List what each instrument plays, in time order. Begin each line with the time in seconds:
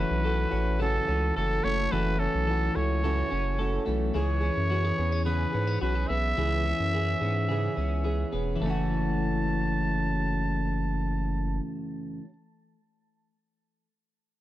Already playing: clean electric guitar E3 A4, steel-string acoustic guitar A3 C#4 F#4, trumpet B4
0.00 steel-string acoustic guitar E3
0.11 sub bass B1
0.23 steel-string acoustic guitar E3 A3 C#4 F#4, clean electric guitar A4
0.51 sub bass A1, steel-string acoustic guitar E3 A3 C#4 F#4
0.80 steel-string acoustic guitar F#2 C#3 E3 A3 C#4 F#4, clean electric guitar A4, trumpet A4
1.07 sub bass C#2, steel-string acoustic guitar E3 A3 C#4 F#4
1.36 sub bass F#1, steel-string acoustic guitar E3 A3 C#4 F#4, trumpet A4, clean electric guitar A4
1.63 sub bass F#1, steel-string acoustic guitar E3 A3 C#4 F#4, trumpet C#5
1.91 sub bass F#1, steel-string acoustic guitar F#2 C#3 E3 A3 C#4 F#4, clean electric guitar A4, trumpet B4
2.19 steel-string acoustic guitar E3 A3 C#4 F#4, trumpet A4
2.35 sub bass B1
2.47 steel-string acoustic guitar E3 A3 C#4 F#4, clean electric guitar A4
2.74 sub bass C#2, steel-string acoustic guitar E3 A3 C#4 F#4, trumpet C#5
3.03 steel-string acoustic guitar F#2 C#3 E3 A3 C#4 F#4, clean electric guitar A4
3.29 sub bass F#1, steel-string acoustic guitar E3 A3 C#4 F#4
3.58 steel-string acoustic guitar E3 A3 C#4 F#4, clean electric guitar A4
3.86 sub bass B1, steel-string acoustic guitar E3 A3 C#4 F#4
4.14 sub bass C#2, steel-string acoustic guitar C#3 E3 B3 C#4 G#4, trumpet C#5
4.41 steel-string acoustic guitar B3 C#4 G#4
4.57 sub bass F#2
4.70 steel-string acoustic guitar E3 B3 C#4 G#4, clean electric guitar F#4
4.85 clean electric guitar G#4
4.98 sub bass E2, steel-string acoustic guitar B3 C#4 G#4
5.12 clean electric guitar C#4
5.25 steel-string acoustic guitar C#3 E3 B3 C#4 G#4, trumpet B4
5.53 sub bass G#2, steel-string acoustic guitar B3 C#4 G#4
5.67 clean electric guitar C#4
5.80 sub bass B1, steel-string acoustic guitar E3 B3 C#4 G#4, clean electric guitar F#4, trumpet B4
5.95 clean electric guitar G#4
6.08 sub bass B1, steel-string acoustic guitar C#4 G#4, trumpet E5
6.13 steel-string acoustic guitar B3
6.38 sub bass C#2, steel-string acoustic guitar C#3 E3 B3 C#4 G#4
6.66 steel-string acoustic guitar B3 C#4 G#4
6.80 sub bass F#2
6.93 steel-string acoustic guitar E3 B3 C#4 G#4
7.21 sub bass G#2, steel-string acoustic guitar B3 C#4 G#4
7.49 steel-string acoustic guitar C#3 E3 B3 C#4 G#4
7.76 sub bass C#2, steel-string acoustic guitar B3 C#4 G#4
8.04 steel-string acoustic guitar E3 B3 C#4 G#4
8.33 sub bass E1, steel-string acoustic guitar B3 C#4 G#4
8.56 steel-string acoustic guitar F#2, clean electric guitar E3
8.60 sub bass F#1, steel-string acoustic guitar C#3 E3, trumpet A5
8.65 steel-string acoustic guitar A3 C#4
8.69 steel-string acoustic guitar F#4